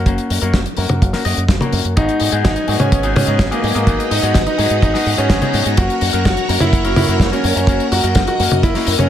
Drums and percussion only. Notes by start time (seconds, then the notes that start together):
0.06 kick, closed hi-hat
0.18 closed hi-hat
0.30 open hi-hat
0.42 closed hi-hat
0.54 kick, snare, closed hi-hat
0.66 closed hi-hat
0.77 open hi-hat
0.89 closed hi-hat, high tom
1.02 kick, closed hi-hat
1.13 snare, open hi-hat
1.25 open hi-hat
1.37 closed hi-hat
1.49 kick, snare, closed hi-hat
1.61 closed hi-hat, high tom
1.73 open hi-hat
1.85 closed hi-hat
1.97 kick, closed hi-hat
2.09 closed hi-hat
2.20 open hi-hat
2.32 closed hi-hat
2.45 kick, snare, closed hi-hat
2.56 closed hi-hat
2.68 open hi-hat
2.80 closed hi-hat, high tom
2.92 kick, closed hi-hat
3.03 closed hi-hat
3.16 open hi-hat, high tom
3.27 closed hi-hat
3.39 kick, snare, closed hi-hat
3.52 closed hi-hat
3.64 open hi-hat
3.76 closed hi-hat
3.87 kick, closed hi-hat
4.00 closed hi-hat
4.11 open hi-hat
4.24 closed hi-hat
4.34 kick, snare, closed hi-hat
4.47 closed hi-hat
4.59 open hi-hat
4.70 closed hi-hat
4.82 kick, closed hi-hat
4.95 snare, open hi-hat
5.06 open hi-hat
5.18 closed hi-hat
5.30 kick, snare, closed hi-hat
5.42 closed hi-hat, high tom
5.54 open hi-hat
5.66 closed hi-hat
5.77 kick, closed hi-hat
5.90 closed hi-hat
6.01 open hi-hat
6.13 closed hi-hat
6.25 kick, snare, closed hi-hat
6.37 closed hi-hat
6.49 open hi-hat
6.60 closed hi-hat, high tom
6.73 kick, closed hi-hat
6.85 closed hi-hat
6.96 open hi-hat, high tom
7.09 closed hi-hat
7.20 kick, snare, closed hi-hat
7.33 closed hi-hat
7.44 open hi-hat
7.57 closed hi-hat
7.67 kick, closed hi-hat
7.80 closed hi-hat
7.92 open hi-hat
8.04 closed hi-hat
8.15 kick, snare, closed hi-hat
8.27 closed hi-hat
8.40 open hi-hat
8.52 closed hi-hat, high tom
8.63 kick, closed hi-hat
8.75 snare, open hi-hat
8.87 open hi-hat
8.99 closed hi-hat, high tom